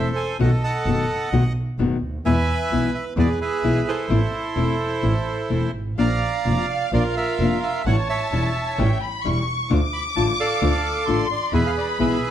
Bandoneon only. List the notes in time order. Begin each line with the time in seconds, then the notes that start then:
Already playing: A4 C5 E5
0.16 G#5
0.40 A4 D#5 F#5
0.63 D#5 F#5 A5
2.25 B4 E5 G#5
2.95 E5
3.19 G#4 B4 D5
3.41 G#4 B4 E5
3.88 E4 A4 C5
5.98 D5 F5 A#5
6.70 F5
6.93 F4 A#4 D5
7.17 A#4 E5
7.63 E5
7.86 C#5 F#5
8.09 C#5 E5 A5
9.93 B5
10.16 A5
10.40 A4 D5 F5
11.31 D5
11.54 G#4 B4 E5
11.66 F5
11.78 D5
12.00 G#4 B4 E5